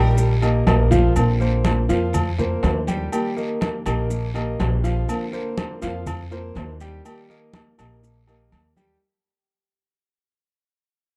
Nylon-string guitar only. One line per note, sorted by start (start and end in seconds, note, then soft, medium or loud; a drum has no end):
0.00 0.16 A#3 medium
0.00 0.17 D#4 medium
0.00 0.16 G4 medium
0.17 muted nylon-string guitar stroke medium
0.42 0.66 A#3 medium
0.42 0.66 D#4 medium
0.42 0.65 G4 medium
0.67 1.15 D#3 soft
0.67 1.15 A#3 soft
0.67 1.15 D#4 medium
0.67 1.16 G4 medium
1.16 1.64 D3 medium
1.16 1.65 A#3 medium
1.16 1.65 C4 medium
1.16 1.65 F4 medium
1.65 1.88 D3 soft
1.65 1.89 A#3 soft
1.65 1.88 C4 soft
1.65 1.88 F4 medium
1.89 2.14 A#3 medium
1.89 2.13 C4 medium
1.89 2.13 F4 medium
2.14 muted nylon-string guitar stroke medium
2.38 2.62 A#3 medium
2.38 2.63 C4 medium
2.38 2.62 F4 medium
2.63 3.11 D3 soft
2.63 3.11 A#3 soft
2.63 3.12 C4 soft
2.63 3.12 F4 medium
3.12 3.60 D#3 medium
3.12 3.60 A#3 medium
3.12 3.61 D#4 medium
3.12 3.61 G4 medium
3.61 3.85 D#3 soft
3.61 3.85 A#3 soft
3.61 3.85 D#4 soft
3.61 3.85 G4 soft
3.86 4.09 A#3 medium
3.86 4.10 D#4 medium
3.86 4.09 G4 medium
4.10 muted nylon-string guitar stroke medium
4.34 4.59 A#3 medium
4.34 4.59 D#4 medium
4.34 4.58 G4 medium
4.59 5.07 D#3 soft
4.59 5.07 A#3 medium
4.59 5.08 D#4 medium
4.59 5.08 G4 medium
5.08 5.56 D3 medium
5.08 5.57 A#3 medium
5.08 5.57 C4 medium
5.08 5.57 F4 medium
5.57 5.81 D3 soft
5.57 5.82 A#3 medium
5.57 5.82 C4 soft
5.57 5.81 F4 medium
5.82 6.06 A#3 medium
5.82 6.06 C4 medium
5.82 6.06 F4 medium
6.06 muted nylon-string guitar stroke medium
6.31 6.55 A#3 medium
6.31 6.55 C4 medium
6.31 6.55 F4 medium
6.56 7.04 D3 soft
6.56 7.04 A#3 medium
6.56 7.05 C4 medium
6.56 7.05 F4 medium
7.05 7.52 D#3 medium
7.05 7.53 A#3 medium
7.05 7.54 D#4 medium
7.05 7.54 G4 medium
7.53 7.77 D#3 soft
7.53 7.78 A#3 soft
7.53 7.78 D#4 medium
7.53 7.77 G4 soft
7.78 8.02 A#3 medium
7.78 8.02 D#4 medium
7.78 8.02 G4 medium
8.03 muted nylon-string guitar stroke medium
8.27 8.51 A#3 medium
8.27 8.51 D#4 medium
8.27 8.51 G4 medium
8.51 9.00 D#3 soft
8.51 9.00 A#3 soft
8.51 9.00 D#4 medium
8.51 9.01 G4 medium